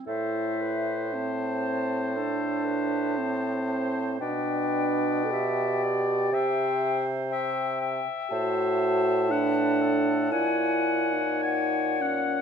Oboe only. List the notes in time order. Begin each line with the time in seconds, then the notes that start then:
0.07 C5
4.22 D5
6.34 E5
7.32 E5
7.81 E5
9.31 F#5
10.32 F#5
11.43 G#5
12.02 F#5